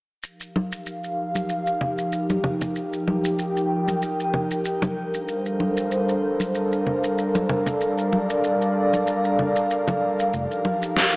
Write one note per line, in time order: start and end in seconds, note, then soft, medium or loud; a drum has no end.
0.23 4.93 F3 medium
0.23 4.93 D#4 medium
0.23 4.93 G4 medium
0.23 11.16 A#4 medium
0.23 2.73 F5 medium
0.23 shaker soft
0.40 shaker soft
0.56 high conga medium
0.72 shaker medium
0.86 shaker soft
1.04 shaker soft
1.35 high conga medium
1.35 shaker medium
1.49 shaker soft
1.67 shaker soft
1.81 low conga medium
1.98 shaker medium
2.12 shaker medium
2.30 high conga medium
2.30 shaker soft
2.44 low conga medium
2.61 low conga medium
2.61 shaker medium
2.76 4.94 G5 medium
2.76 shaker soft
2.93 shaker soft
3.08 high conga medium
3.25 shaker medium
3.39 shaker medium
3.56 shaker soft
3.88 high conga medium
3.88 shaker medium
4.02 shaker soft
4.20 shaker soft
4.34 low conga medium
4.51 shaker medium
4.65 shaker medium
4.82 high conga medium
4.82 low conga medium
4.82 shaker soft
4.97 10.30 G3 medium
4.97 10.30 D4 medium
4.97 10.30 A4 medium
4.97 7.47 C5 medium
4.97 11.16 F5 medium
5.14 shaker medium
5.28 shaker soft
5.46 shaker soft
5.60 high conga medium
5.77 shaker medium
5.92 shaker medium
6.09 shaker soft
6.40 high conga medium
6.40 shaker medium
6.55 shaker soft
6.72 shaker soft
6.87 low conga medium
7.04 shaker medium
7.18 shaker medium
7.35 high conga medium
7.35 shaker soft
7.49 10.31 D5 medium
7.49 low conga medium
7.66 low conga medium
7.66 shaker medium
7.81 shaker soft
7.98 shaker soft
8.13 high conga medium
8.30 shaker medium
8.44 shaker medium
8.62 shaker soft
8.93 high conga medium
8.93 shaker medium
9.07 shaker medium
9.25 shaker soft
9.39 low conga medium
9.56 shaker medium
9.71 shaker medium
9.88 high conga medium
9.88 low conga medium
9.88 shaker soft
10.20 shaker medium
10.33 10.44 F1 medium
10.33 11.16 F3 medium
10.33 11.16 D#4 medium
10.33 11.16 G4 medium
10.33 shaker soft
10.51 shaker soft
10.65 high conga medium
10.82 shaker medium
10.97 snare medium
10.97 shaker medium